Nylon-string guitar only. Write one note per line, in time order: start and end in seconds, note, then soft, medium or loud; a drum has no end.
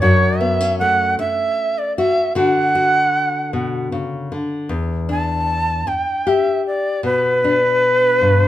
0.02 1.18 F#2 medium
0.02 1.97 F#4 medium
0.41 0.61 B3 medium
0.61 2.36 C#4 soft
0.81 2.32 A3 medium
1.19 muted nylon-string guitar stroke medium
1.98 2.32 F#4 medium
2.35 4.31 D3 medium
2.35 2.74 F#4 medium
2.75 4.66 F#4 medium
3.53 3.92 B2 medium
3.92 4.31 C#3 medium
4.32 4.70 D3 medium
4.69 5.86 E2 medium
5.09 6.99 D4 medium
5.87 muted nylon-string guitar stroke medium
6.27 7.00 G4 medium
7.03 8.48 B2 medium
7.44 8.48 D4 medium
8.21 8.48 G2 medium